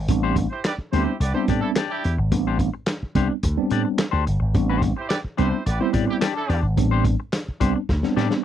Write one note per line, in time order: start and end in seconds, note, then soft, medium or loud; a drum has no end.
0.08 0.46 A1 medium
0.08 0.45 G3 medium
0.08 0.45 B3 medium
0.08 0.45 C4 medium
0.08 0.45 D4 medium
0.08 muted clean electric guitar stroke soft
0.08 kick loud
0.08 closed hi-hat medium
0.23 0.37 D4 medium
0.23 0.37 G4 medium
0.23 0.38 C5 medium
0.36 kick medium
0.36 closed hi-hat medium
0.50 0.61 E4 medium
0.50 0.61 G4 medium
0.50 0.61 C5 medium
0.50 muted clean electric guitar stroke soft
0.64 0.73 G4 medium
0.64 0.73 B4 medium
0.64 0.73 D5 loud
0.64 muted clean electric guitar stroke soft
0.64 snare medium
0.64 clap medium
0.64 closed hi-hat medium
0.78 muted slap bass stroke soft
0.92 1.05 D2 medium
0.92 1.11 G3 medium
0.92 1.11 B3 medium
0.92 1.11 C4 medium
0.92 1.11 D4 medium
0.92 1.09 D4 medium
0.92 1.15 E4 loud
0.92 1.15 G4 loud
0.92 1.05 G4 medium
0.92 1.15 C5 loud
0.92 1.04 C5 medium
0.92 closed hi-hat medium
1.06 muted clean electric guitar stroke soft
1.20 1.32 C2 medium
1.20 1.32 G4 medium
1.20 1.32 B4 medium
1.20 1.32 D5 loud
1.20 muted clean electric guitar stroke soft
1.20 closed hi-hat medium
1.34 1.77 G3 medium
1.34 1.77 B3 medium
1.34 1.77 C4 medium
1.34 1.77 D4 medium
1.34 1.43 E4 medium
1.34 1.43 G4 medium
1.34 1.43 C5 medium
1.48 1.61 A2 loud
1.48 1.65 D4 medium
1.48 1.62 G4 medium
1.48 1.63 D5 medium
1.48 kick medium
1.48 closed hi-hat medium
1.60 1.69 D4 medium
1.60 1.70 E4 medium
1.60 1.70 A4 medium
1.60 muted clean electric guitar stroke medium
1.75 2.02 D4 medium
1.75 2.03 G4 medium
1.75 2.03 D5 medium
1.75 snare loud
1.75 clap medium
1.75 closed hi-hat medium
1.90 2.13 D4 loud
1.90 2.13 E4 loud
1.90 2.12 G4 loud
2.04 2.17 E2 medium
2.04 muted clean electric guitar stroke soft
2.04 closed hi-hat medium
2.18 2.30 G#1 medium
2.18 muted clean electric guitar stroke soft
2.31 2.68 A1 medium
2.31 2.68 G3 medium
2.31 2.68 B3 medium
2.31 2.68 C4 medium
2.31 2.68 D4 medium
2.31 muted clean electric guitar stroke soft
2.31 kick loud
2.31 closed hi-hat medium
2.47 2.59 D4 medium
2.47 2.59 G4 medium
2.47 2.59 C5 medium
2.59 muted clean electric guitar stroke soft
2.59 kick loud
2.59 closed hi-hat medium
2.74 muted clean electric guitar stroke soft
2.86 muted clean electric guitar stroke soft
2.86 snare medium
2.86 clap medium
2.86 closed hi-hat medium
3.03 muted slap bass stroke soft
3.15 3.28 C2 medium
3.15 3.33 G3 medium
3.15 3.34 B3 medium
3.15 3.34 C4 medium
3.15 3.32 D4 medium
3.15 3.34 D4 medium
3.15 3.30 G4 medium
3.15 3.29 C5 medium
3.15 kick medium
3.15 closed hi-hat medium
3.30 muted clean electric guitar stroke soft
3.43 3.56 D2 medium
3.43 muted clean electric guitar stroke soft
3.43 kick medium
3.43 closed hi-hat loud
3.57 3.99 G3 medium
3.57 4.00 B3 medium
3.57 4.00 C4 medium
3.57 4.00 D4 medium
3.70 3.84 A2 medium
3.70 3.88 D4 medium
3.70 3.85 G4 medium
3.70 3.85 D5 medium
3.70 closed hi-hat medium
3.85 muted clean electric guitar stroke soft
3.98 muted clean electric guitar stroke soft
3.98 snare loud
3.98 clap medium
3.98 closed hi-hat medium
4.11 4.25 D2 loud
4.11 4.25 D4 medium
4.11 4.26 G4 medium
4.11 4.26 C5 medium
4.27 4.40 G1 medium
4.27 muted clean electric guitar stroke soft
4.27 closed hi-hat medium
4.40 4.53 G#1 medium
4.40 muted clean electric guitar stroke soft
4.54 4.92 A1 medium
4.54 4.91 G3 medium
4.54 4.91 B3 medium
4.54 4.91 C4 medium
4.54 4.91 D4 medium
4.54 muted clean electric guitar stroke soft
4.54 kick loud
4.54 closed hi-hat medium
4.70 4.82 D4 medium
4.70 4.83 G4 medium
4.70 4.83 C5 medium
4.82 muted clean electric guitar stroke soft
4.82 kick loud
4.82 closed hi-hat medium
4.97 5.08 E4 medium
4.97 5.08 G4 medium
4.97 5.08 C5 medium
4.97 muted clean electric guitar stroke soft
5.09 5.18 G4 medium
5.09 5.18 B4 medium
5.09 5.18 D5 loud
5.09 muted clean electric guitar stroke soft
5.09 snare medium
5.09 clap medium
5.09 closed hi-hat medium
5.24 muted slap bass stroke soft
5.37 5.51 C2 medium
5.37 5.56 G3 medium
5.37 5.56 B3 medium
5.37 5.57 C4 medium
5.37 5.54 D4 medium
5.37 5.57 D4 medium
5.37 5.61 E4 loud
5.37 5.50 G4 medium
5.37 5.61 G4 medium
5.37 5.50 C5 medium
5.37 5.61 C5 loud
5.37 closed hi-hat medium
5.51 muted clean electric guitar stroke soft
5.66 5.78 A1 medium
5.66 5.77 G4 medium
5.66 5.77 B4 medium
5.66 5.78 D5 medium
5.66 muted clean electric guitar stroke soft
5.66 closed hi-hat medium
5.80 6.22 G3 medium
5.80 6.23 B3 medium
5.80 6.23 C4 medium
5.80 6.23 E4 medium
5.80 5.89 E4 medium
5.80 5.89 G4 medium
5.80 5.89 C5 medium
5.93 6.06 A2 medium
5.93 6.10 D4 medium
5.93 6.07 G4 medium
5.93 6.07 D5 medium
5.93 kick medium
5.93 closed hi-hat medium
6.07 6.17 D4 medium
6.07 6.17 E4 medium
6.07 6.17 G4 loud
6.07 muted clean electric guitar stroke soft
6.21 6.42 D4 medium
6.21 6.35 G4 medium
6.21 6.34 D5 medium
6.21 snare loud
6.21 clap medium
6.21 closed hi-hat medium
6.35 6.58 D4 loud
6.35 6.58 E4 loud
6.35 6.58 A4 loud
6.35 muted clean electric guitar stroke soft
6.49 6.62 E2 medium
6.49 6.65 D4 medium
6.49 6.62 G4 medium
6.49 6.62 D5 medium
6.49 closed hi-hat medium
6.63 6.78 G#1 medium
6.63 muted clean electric guitar stroke soft
6.77 7.14 A1 medium
6.77 7.14 G3 medium
6.77 7.14 B3 medium
6.77 7.14 C4 medium
6.77 7.14 D4 medium
6.77 muted clean electric guitar stroke soft
6.77 kick loud
6.77 closed hi-hat medium
6.91 7.05 D4 medium
6.91 7.05 G4 medium
6.91 7.05 C5 medium
7.05 muted clean electric guitar stroke soft
7.05 kick loud
7.05 closed hi-hat medium
7.20 muted clean electric guitar stroke medium
7.32 muted clean electric guitar stroke soft
7.32 snare medium
7.32 clap medium
7.32 closed hi-hat medium
7.48 muted slap bass stroke soft
7.60 7.73 C2 medium
7.60 7.79 G3 medium
7.60 7.79 B3 medium
7.60 7.79 C4 medium
7.60 7.77 D4 medium
7.60 7.79 D4 medium
7.60 7.75 G4 medium
7.60 7.74 C5 medium
7.60 kick medium
7.60 closed hi-hat medium
7.76 muted clean electric guitar stroke soft
7.89 8.01 D2 medium
7.89 muted clean electric guitar stroke soft
7.89 kick medium
7.89 snare medium
8.03 8.44 G3 medium
8.03 8.44 B3 medium
8.03 8.44 C4 medium
8.03 8.44 D4 medium
8.03 snare medium
8.16 8.29 A2 medium
8.16 8.33 D4 medium
8.16 8.30 G4 medium
8.16 8.30 D5 medium
8.16 snare medium
8.30 muted clean electric guitar stroke soft
8.30 snare medium